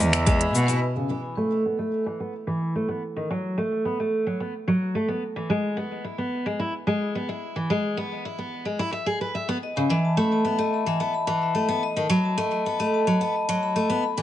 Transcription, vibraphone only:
Already playing: E5 G#5 B5
0.00 D#5
0.12 E6
0.25 E5
0.39 B5
0.53 G#5
0.67 B4
9.63 D#5
9.76 B5
9.90 E5
10.05 A5
10.19 B5
10.33 A5
10.45 E5
10.60 D#5
10.74 B5
10.87 E5
11.01 A5
11.14 B5
11.28 A5
11.43 E5
11.57 D#5
11.70 B5
11.83 D#5
11.97 A5
12.11 B5
12.25 A5
12.38 D#5
12.52 D#5
12.66 B5
12.80 D#5
12.94 A5
13.08 B5
13.21 A5
13.36 D#5
13.50 D#5
13.63 B5
13.76 D#5
13.89 A5
14.02 B5
14.17 G#5

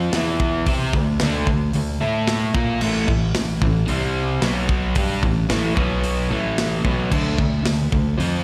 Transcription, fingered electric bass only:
0.13 E2
0.67 C3
0.94 D2
1.22 D2
1.48 D2
1.76 D2
2.02 A2
2.55 A#2
2.82 A1
3.08 A1
3.35 A1
3.62 A1
3.89 C2
4.42 B1
4.96 G2
5.23 A1
5.50 A1
5.78 B1
6.31 A1
6.85 B1
7.12 D2
7.39 D2
7.65 D2
7.92 D2
8.19 F2

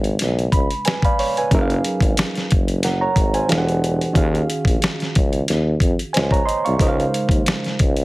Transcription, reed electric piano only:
Already playing: C#3 G#3 D4 B4 F5
0.52 B5
0.85 B4 G#5
1.05 D5 F5 B5
1.19 C#5
1.38 B4 G#5
1.51 F#3 C#4 D#4 G#4 A#4
1.55 E5
1.62 F5
2.84 A#4 F#5
3.01 C#5 A#5
3.34 C5 G#5
3.48 E3 D4 G4 A4 F5
3.57 F#5
4.13 D#3 C#4 F#4 G#4
4.17 F5
6.13 C5 G#5
6.32 C#5 A#5
6.46 D#5 C6
6.65 F5 C#6
6.78 C#3 G#3 D#4 A#4 C5
6.82 D#5
6.89 F5

